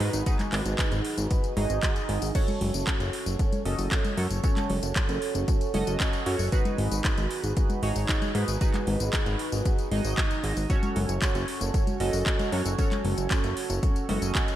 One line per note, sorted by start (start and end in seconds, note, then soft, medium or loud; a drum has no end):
0.00 0.10 G#2 loud
0.00 0.23 D#4 medium
0.00 0.23 F#4 medium
0.00 0.23 G#4 medium
0.00 0.23 B4 loud
0.00 open hi-hat loud
0.13 0.23 G#1 medium
0.13 closed hi-hat soft
0.13 tambourine medium
0.26 1.54 D#4 medium
0.26 1.54 F#4 medium
0.26 1.54 G#4 medium
0.26 1.54 B4 loud
0.26 kick loud
0.26 closed hi-hat medium
0.26 tambourine soft
0.39 clap soft
0.39 closed hi-hat soft
0.39 tambourine soft
0.39 high conga medium
0.52 0.62 G#1 loud
0.52 clap medium
0.52 open hi-hat loud
0.66 0.75 G#1 medium
0.66 closed hi-hat soft
0.66 tambourine medium
0.79 kick loud
0.79 clap loud
0.79 closed hi-hat medium
0.79 tambourine medium
0.92 1.01 G#1 medium
0.92 closed hi-hat soft
0.92 tambourine soft
1.05 open hi-hat loud
1.18 1.27 G#1 medium
1.18 closed hi-hat soft
1.18 tambourine medium
1.31 kick loud
1.31 closed hi-hat medium
1.31 tambourine soft
1.44 closed hi-hat soft
1.44 tambourine soft
1.57 1.66 G#1 medium
1.57 2.32 D#4 medium
1.57 2.32 F#4 medium
1.57 2.32 G#4 medium
1.57 2.32 D#5 loud
1.57 open hi-hat loud
1.57 high conga medium
1.70 1.80 G#1 medium
1.70 closed hi-hat soft
1.70 tambourine medium
1.83 kick loud
1.83 clap loud
1.83 closed hi-hat medium
1.83 tambourine soft
1.96 closed hi-hat soft
1.96 tambourine soft
2.09 2.19 G#1 medium
2.09 open hi-hat loud
2.22 2.32 G#1 medium
2.22 open hi-hat medium
2.22 tambourine medium
2.35 3.62 C#4 medium
2.35 3.62 F#4 medium
2.35 3.62 A4 medium
2.35 3.62 C#5 loud
2.35 kick loud
2.35 closed hi-hat medium
2.35 crash medium
2.35 tambourine soft
2.48 closed hi-hat soft
2.48 tambourine soft
2.48 high conga medium
2.61 2.71 F#1 loud
2.61 open hi-hat loud
2.61 high conga medium
2.74 2.84 F#1 medium
2.74 closed hi-hat soft
2.74 tambourine medium
2.87 kick loud
2.87 clap loud
2.87 closed hi-hat medium
2.87 tambourine soft
3.00 3.10 F#1 medium
3.00 closed hi-hat soft
3.00 tambourine soft
3.13 open hi-hat loud
3.26 3.36 F#1 medium
3.26 closed hi-hat soft
3.26 tambourine medium
3.39 kick loud
3.39 closed hi-hat medium
3.39 tambourine soft
3.53 closed hi-hat soft
3.53 tambourine soft
3.53 high conga medium
3.65 3.75 F#1 medium
3.65 4.14 C#4 loud
3.65 4.14 F#4 medium
3.65 4.14 A4 medium
3.65 4.14 D#5 loud
3.65 open hi-hat loud
3.78 3.88 F#1 medium
3.78 open hi-hat medium
3.78 tambourine medium
3.91 kick loud
3.91 clap loud
3.91 closed hi-hat medium
3.91 tambourine soft
4.05 closed hi-hat soft
4.05 tambourine soft
4.05 high conga medium
4.17 4.27 F#2 medium
4.17 4.41 C#4 loud
4.17 4.41 F#4 medium
4.17 4.41 A4 medium
4.17 4.41 C#5 loud
4.17 open hi-hat loud
4.31 4.40 F#1 medium
4.31 closed hi-hat soft
4.31 tambourine medium
4.44 5.71 C#4 medium
4.44 5.71 F#4 medium
4.44 5.71 A4 medium
4.44 5.71 C#5 loud
4.44 kick loud
4.44 closed hi-hat medium
4.44 tambourine soft
4.57 clap soft
4.57 closed hi-hat soft
4.57 tambourine soft
4.57 high conga medium
4.70 4.79 F#1 loud
4.70 open hi-hat loud
4.70 high conga medium
4.83 4.92 F#1 medium
4.83 closed hi-hat soft
4.83 tambourine medium
4.96 kick loud
4.96 clap loud
4.96 closed hi-hat medium
4.96 tambourine soft
5.09 5.19 F#1 medium
5.09 closed hi-hat soft
5.09 tambourine soft
5.22 open hi-hat loud
5.35 5.45 F#1 medium
5.35 closed hi-hat soft
5.35 tambourine medium
5.48 kick loud
5.48 closed hi-hat medium
5.48 tambourine soft
5.61 closed hi-hat soft
5.61 tambourine soft
5.74 5.84 F#1 medium
5.74 6.23 C#4 loud
5.74 6.23 F#4 loud
5.74 6.23 A4 medium
5.74 6.23 D#5 loud
5.74 open hi-hat loud
5.74 high conga medium
5.87 5.97 F#1 medium
5.87 closed hi-hat soft
5.87 tambourine medium
6.00 kick loud
6.00 clap loud
6.00 closed hi-hat medium
6.00 tambourine soft
6.13 closed hi-hat soft
6.13 tambourine soft
6.26 6.36 F#2 medium
6.26 6.49 C#4 medium
6.26 6.49 F#4 medium
6.26 6.49 A4 medium
6.26 6.49 C#5 loud
6.26 open hi-hat loud
6.39 6.49 F#1 medium
6.39 open hi-hat medium
6.39 tambourine medium
6.52 7.80 D#4 medium
6.52 7.80 F#4 medium
6.52 7.80 G#4 medium
6.52 7.80 B4 loud
6.52 kick loud
6.52 closed hi-hat medium
6.52 tambourine soft
6.65 closed hi-hat soft
6.65 tambourine soft
6.65 high conga medium
6.78 6.88 G#1 loud
6.78 open hi-hat loud
6.78 high conga medium
6.91 7.01 G#1 medium
6.91 closed hi-hat soft
6.91 tambourine medium
7.05 kick loud
7.05 clap loud
7.05 closed hi-hat medium
7.05 tambourine medium
7.18 7.27 G#1 medium
7.18 closed hi-hat soft
7.18 tambourine soft
7.31 open hi-hat loud
7.44 7.53 G#1 medium
7.44 closed hi-hat soft
7.44 tambourine medium
7.57 kick loud
7.57 closed hi-hat medium
7.57 tambourine soft
7.70 closed hi-hat soft
7.70 tambourine soft
7.70 high conga medium
7.83 7.92 G#1 loud
7.83 8.32 D#4 loud
7.83 8.32 F#4 medium
7.83 8.32 G#4 medium
7.83 8.32 C#5 loud
7.83 open hi-hat loud
7.96 8.05 G#1 medium
7.96 open hi-hat medium
7.96 tambourine medium
8.09 kick loud
8.09 clap loud
8.09 closed hi-hat medium
8.09 tambourine soft
8.22 closed hi-hat soft
8.22 tambourine soft
8.22 high conga medium
8.35 8.45 G#2 medium
8.35 8.58 D#4 medium
8.35 8.58 F#4 medium
8.35 8.58 G#4 medium
8.35 8.58 B4 loud
8.35 open hi-hat loud
8.48 8.58 G#1 medium
8.48 closed hi-hat soft
8.48 tambourine medium
8.61 9.88 D#4 medium
8.61 9.88 F#4 medium
8.61 9.88 G#4 medium
8.61 9.88 B4 loud
8.61 kick loud
8.61 closed hi-hat medium
8.61 tambourine medium
8.74 clap soft
8.74 closed hi-hat soft
8.74 tambourine soft
8.74 high conga medium
8.87 8.97 G#1 loud
8.87 open hi-hat loud
8.87 high conga medium
9.00 9.10 G#1 medium
9.00 closed hi-hat soft
9.00 tambourine medium
9.13 kick loud
9.13 clap loud
9.13 closed hi-hat medium
9.13 tambourine medium
9.26 9.36 G#1 medium
9.26 closed hi-hat soft
9.26 tambourine soft
9.39 open hi-hat loud
9.52 9.62 G#1 medium
9.52 closed hi-hat soft
9.52 tambourine medium
9.65 kick loud
9.65 closed hi-hat medium
9.65 tambourine medium
9.79 closed hi-hat soft
9.79 tambourine soft
9.91 10.01 G#1 medium
9.91 10.67 D#4 loud
9.91 10.67 F#4 medium
9.91 10.67 G#4 medium
9.91 10.67 D#5 loud
9.91 open hi-hat loud
9.91 high conga medium
10.05 10.14 G#1 medium
10.05 closed hi-hat soft
10.05 tambourine medium
10.18 kick loud
10.18 clap loud
10.18 closed hi-hat medium
10.18 tambourine soft
10.31 closed hi-hat soft
10.31 tambourine soft
10.44 10.53 G#1 medium
10.44 open hi-hat loud
10.57 10.66 G#1 medium
10.57 open hi-hat medium
10.57 tambourine medium
10.70 11.97 C#4 medium
10.70 11.97 F#4 medium
10.70 11.97 A4 medium
10.70 11.97 C#5 loud
10.70 kick loud
10.70 closed hi-hat medium
10.70 tambourine soft
10.83 closed hi-hat soft
10.83 tambourine soft
10.83 high conga medium
10.96 11.06 F#1 loud
10.96 open hi-hat loud
10.96 high conga medium
11.09 11.19 F#1 medium
11.09 closed hi-hat soft
11.09 tambourine medium
11.22 kick loud
11.22 clap loud
11.22 closed hi-hat medium
11.22 tambourine medium
11.35 11.45 F#1 medium
11.35 closed hi-hat soft
11.35 tambourine soft
11.48 open hi-hat loud
11.61 11.71 F#1 medium
11.61 closed hi-hat soft
11.61 tambourine medium
11.74 kick loud
11.74 closed hi-hat medium
11.74 tambourine medium
11.87 closed hi-hat soft
11.87 tambourine soft
11.87 high conga medium
12.00 12.10 F#1 medium
12.00 12.49 C#4 loud
12.00 12.49 F#4 medium
12.00 12.49 A4 medium
12.00 12.49 D#5 loud
12.00 open hi-hat loud
12.13 12.23 F#1 medium
12.13 open hi-hat medium
12.13 tambourine medium
12.26 kick loud
12.26 clap loud
12.26 closed hi-hat medium
12.26 tambourine medium
12.39 closed hi-hat soft
12.39 tambourine soft
12.39 high conga medium
12.52 12.62 F#2 medium
12.52 12.75 C#4 medium
12.52 12.75 F#4 medium
12.52 12.75 A4 medium
12.52 12.75 C#5 loud
12.52 open hi-hat loud
12.65 12.75 F#1 medium
12.65 closed hi-hat soft
12.65 tambourine medium
12.78 14.06 C#4 medium
12.78 14.06 F#4 medium
12.78 14.06 A4 medium
12.78 14.06 C#5 loud
12.78 kick loud
12.78 closed hi-hat medium
12.78 tambourine medium
12.92 clap soft
12.92 closed hi-hat soft
12.92 tambourine soft
12.92 high conga medium
13.05 13.14 F#1 loud
13.05 open hi-hat loud
13.05 high conga medium
13.18 13.27 F#1 medium
13.18 closed hi-hat soft
13.18 tambourine medium
13.31 kick loud
13.31 clap loud
13.31 closed hi-hat medium
13.31 tambourine medium
13.44 13.53 F#1 medium
13.44 closed hi-hat soft
13.44 tambourine soft
13.57 open hi-hat loud
13.70 13.79 F#1 medium
13.70 closed hi-hat soft
13.70 tambourine medium
13.83 kick loud
13.83 closed hi-hat medium
13.83 tambourine medium
13.96 closed hi-hat soft
13.96 tambourine soft
14.09 14.19 F#1 medium
14.09 14.56 C#4 loud
14.09 14.56 F#4 medium
14.09 14.56 A4 medium
14.09 14.56 D#5 loud
14.09 open hi-hat loud
14.09 high conga medium
14.22 14.32 F#1 medium
14.22 closed hi-hat soft
14.22 tambourine medium
14.35 kick loud
14.35 clap loud
14.35 closed hi-hat medium
14.35 tambourine medium
14.48 closed hi-hat soft
14.48 tambourine soft